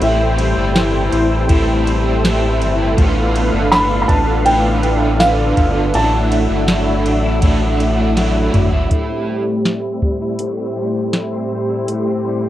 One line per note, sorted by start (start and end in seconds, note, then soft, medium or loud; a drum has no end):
0.00 0.54 A1 loud
0.00 1.49 A2 medium
0.00 1.47 A2 medium
0.00 0.74 E3 medium
0.00 1.47 E3 medium
0.00 0.38 G3 medium
0.00 1.49 G3 medium
0.00 0.19 C4 medium
0.00 2.95 E4 medium
0.00 0.92 E4 medium
0.00 8.87 A4 medium
0.00 2.95 C5 medium
0.00 1.46 E5 medium
0.00 2.95 G5 medium
0.00 ride medium
0.05 1.50 C4 medium
0.05 1.52 E4 medium
0.20 0.55 C4 medium
0.38 1.84 G3 medium
0.38 ride medium
0.57 1.10 G1 loud
0.57 1.11 C4 medium
0.75 2.22 E3 medium
0.75 snare loud
0.75 ride medium
0.75 tambourine medium
0.94 1.29 E4 medium
1.12 2.62 A1 medium
1.12 1.66 C4 medium
1.12 ride soft
1.30 1.48 E4 medium
1.49 2.95 A2 medium
1.49 2.22 E3 medium
1.49 2.24 G3 medium
1.49 2.25 C4 medium
1.49 2.40 E4 medium
1.49 kick loud
1.49 ride medium
1.53 2.25 E4 medium
1.67 2.03 C4 medium
1.85 3.05 G3 medium
1.85 ride soft
2.05 2.59 C4 medium
2.23 3.05 E3 medium
2.23 2.98 E3 medium
2.23 2.99 G3 medium
2.23 2.99 C4 medium
2.23 snare loud
2.23 ride medium
2.23 tambourine medium
2.27 3.00 E4 medium
2.41 2.77 E4 medium
2.60 2.96 G1 medium
2.60 3.05 C4 medium
2.60 ride soft
2.78 2.97 E4 medium
2.96 3.51 A1 loud
2.96 4.44 A2 medium
2.96 4.46 A2 medium
2.96 4.45 D3 medium
2.96 8.87 D4 medium
2.96 3.88 F4 medium
2.96 5.92 B4 medium
2.96 5.92 F5 medium
2.96 kick loud
2.96 ride medium
3.01 4.46 A3 loud
3.01 4.47 B3 medium
3.01 4.48 F4 loud
3.15 3.51 B3 medium
3.34 4.82 A3 medium
3.34 ride soft
3.52 4.06 G1 loud
3.52 4.06 B3 medium
3.71 5.19 D3 medium
3.71 4.00 B5 loud
3.71 snare loud
3.71 ride medium
3.71 tambourine medium
3.89 4.26 F4 medium
4.02 4.09 B5 medium
4.08 5.53 A1 loud
4.08 4.64 B3 medium
4.08 4.47 A5 medium
4.08 kick loud
4.08 ride soft
4.27 4.45 F4 medium
4.45 5.93 A2 loud
4.45 5.19 D3 medium
4.45 5.20 A3 medium
4.45 5.21 B3 medium
4.45 5.37 F4 medium
4.45 5.22 G5 loud
4.45 ride medium
4.49 5.22 F4 medium
4.65 5.00 B3 medium
4.83 6.31 A3 medium
4.83 ride soft
5.01 5.56 B3 medium
5.19 5.94 D3 medium
5.19 6.67 D3 medium
5.19 5.95 A3 medium
5.19 5.95 B3 medium
5.19 5.90 F5 medium
5.19 snare loud
5.19 ride medium
5.19 tambourine medium
5.24 5.96 F4 medium
5.38 5.74 F4 medium
5.57 5.93 G1 medium
5.57 6.02 B3 medium
5.57 kick medium
5.57 ride soft
5.75 5.94 F4 medium
5.94 6.47 A1 loud
5.94 6.68 A2 medium
5.94 7.41 A2 medium
5.94 6.66 F#3 medium
5.94 6.69 A3 medium
5.94 6.69 D4 medium
5.94 6.86 E4 medium
5.94 6.70 E4 medium
5.94 8.88 E5 medium
5.94 8.88 F#5 medium
5.94 8.13 A5 loud
5.94 ride medium
6.13 6.48 D4 medium
6.31 7.80 A3 medium
6.31 ride soft
6.49 7.08 G1 medium
6.49 7.04 D4 medium
6.67 7.40 F#3 medium
6.67 8.16 F#3 medium
6.67 7.43 A3 medium
6.67 7.43 D4 medium
6.67 snare loud
6.67 ride medium
6.67 tambourine medium
6.72 7.45 E4 medium
6.87 7.23 E4 medium
7.05 8.50 A1 medium
7.05 7.60 D4 medium
7.05 ride soft
7.24 7.43 E4 medium
7.41 8.90 A2 medium
7.41 8.15 F#3 medium
7.41 8.18 A3 medium
7.41 8.18 D4 medium
7.41 8.36 E4 medium
7.41 kick loud
7.41 ride medium
7.45 8.19 E4 medium
7.61 7.97 D4 medium
7.80 9.28 A3 medium
7.80 ride soft
7.99 8.53 D4 medium
8.16 8.91 F#3 medium
8.16 8.99 F#3 medium
8.16 9.43 A3 medium
8.16 8.92 D4 medium
8.16 snare medium
8.16 ride medium
8.20 9.43 E4 medium
8.36 8.72 E4 medium
8.54 8.89 G1 medium
8.54 8.98 D4 medium
8.54 mid tom loud
8.54 ride soft
8.73 9.65 E4 medium
8.73 floor tom medium
8.91 12.49 A2 medium
8.91 10.38 A2 medium
8.91 12.49 A3 medium
8.91 12.49 G4 medium
8.91 12.49 C5 medium
8.91 kick medium
8.91 closed hi-hat medium
9.10 9.46 C4 medium
9.28 10.01 G3 soft
9.47 9.83 C4 soft
9.65 10.20 E4 medium
9.65 snare loud
9.65 closed hi-hat medium
9.84 10.56 C4 medium
10.02 10.75 G3 soft
10.02 kick medium
10.21 11.12 E4 medium
10.39 11.86 A2 medium
10.39 closed hi-hat medium
10.58 10.93 C4 soft
10.76 11.49 G3 soft
10.94 11.31 C4 soft
11.13 11.68 E4 medium
11.13 snare medium
11.13 closed hi-hat medium
11.32 12.05 C4 soft
11.51 12.24 G3 soft
11.69 12.49 E4 medium
11.88 12.49 A2 medium
11.88 closed hi-hat medium
12.06 12.42 C4 medium
12.25 12.49 G3 medium
12.43 12.49 C4 soft